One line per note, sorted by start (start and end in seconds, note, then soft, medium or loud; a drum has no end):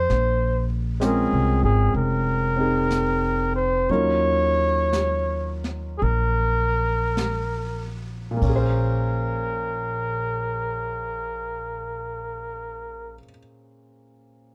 0.00 0.11 F4 soft
0.00 0.12 A#4 soft
0.00 0.68 C5 medium
0.10 1.28 A#1 medium
0.10 brush sweep soft
0.10 snare soft
1.00 3.88 G#3 soft
1.00 2.55 C4 soft
1.00 3.89 C#4 soft
1.00 3.90 F4 soft
1.00 1.07 G4 soft
1.00 snare soft
1.00 hi-hat pedal soft
1.05 1.64 G#4 medium
1.05 3.90 A#4 medium
1.32 1.61 C2 soft
1.63 1.92 G#1 medium
1.63 1.93 G#4 medium
1.94 3.85 F1 medium
1.94 3.52 A#4 medium
1.94 brush sweep soft
2.56 3.88 C4 soft
2.56 3.89 D#4 soft
2.56 3.90 G#4 soft
2.91 snare soft
2.91 hi-hat pedal soft
3.56 3.92 C5 medium
3.89 5.97 D#2 medium
3.89 8.42 F#3 soft
3.89 8.41 C#4 soft
3.89 8.43 D#4 soft
3.89 8.43 F4 soft
3.89 8.43 A#4 soft
3.89 5.64 C#5 medium
3.89 brush sweep soft
4.93 snare soft
4.93 hi-hat pedal soft
5.64 snare soft
5.98 8.38 A#1 medium
5.98 6.05 G#4 medium
5.98 brush sweep soft
6.03 7.99 A#4 medium
7.17 snare soft
7.17 hi-hat pedal soft
8.31 13.12 A#2 soft
8.37 13.18 A#3 soft
8.42 13.19 A#1 medium
8.42 13.24 C#4 soft
8.42 13.20 A#4 medium
8.42 kick soft
8.42 ride soft
8.49 13.30 G#4 soft
8.56 13.37 C5 medium